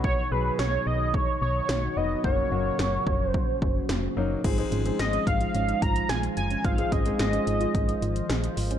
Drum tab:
CC |----------------|----------------|x---------------|----------------|
HH |----------------|----------------|xxxxxxxxxxxxxxxx|xxxxxxxxxxxxxxox|
SD |----o-------o---|----o-------o---|----o-------o---|----o-------o---|
BD |o-------o-------|o-----o-o-o-----|o-----o---o-----|o-o-----o-------|